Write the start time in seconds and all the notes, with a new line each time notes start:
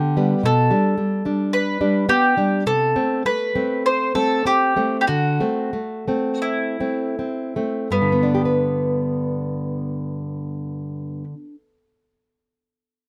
Already playing: D3 G4
0.17 G3 B3
0.43 B2 A4
0.71 G3 D4
1.25 G3 D4
1.53 B4
1.81 G3 D4
2.09 B3 G4
2.37 G3 D4
2.66 C3 A4
2.96 A3 C4
3.25 A3 B4
3.55 A3 C4
3.86 C5
4.15 A3 C4 A4
4.45 C4 G4
4.76 A3 C4
5.01 G4
5.07 D3 F#4
5.40 A3 C4
5.73 A3
6.08 A3 C4
6.42 E4
6.80 A3 C4
7.19 C4
7.56 A3 C4
7.91 G2 B3
8.02 D3
8.12 B3
8.23 D4
8.35 G4
8.45 B4